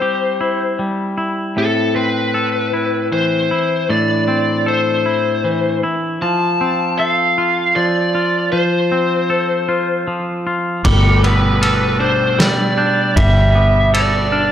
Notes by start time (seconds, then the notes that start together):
Already playing: G3 C4 E4 G4 C5 E5 G5
0.02 G4
0.41 E4
0.79 G3
1.18 E4
1.56 A2 C4 E4 A4
1.95 C4 B4
2.34 A4
2.73 E4
3.12 E3 C5
3.51 E4
3.89 A2 D4 D5
4.28 C4
4.66 A4 C5
5.06 E4
5.45 E3
5.83 E4
6.22 F3 F4 A5
6.61 C4
6.99 A4 F5
7.38 F4
7.76 F3 D5
8.15 F4
8.52 F3 C5
8.92 C4
9.30 A4
9.69 F4
10.08 F3
10.47 F4
10.84 G1 B2 G3 A3 G4 A4 D6, kick, crash
11.24 B3 B4 E6, ride
11.62 A4 F6, ride
12.00 D4 C5 G6
12.38 G3 D5, snare, ride
12.78 D4 G6
13.16 G1 G3 E5, kick, ride
13.55 B3 D6
13.94 A4 D5, ride
14.32 D4 F6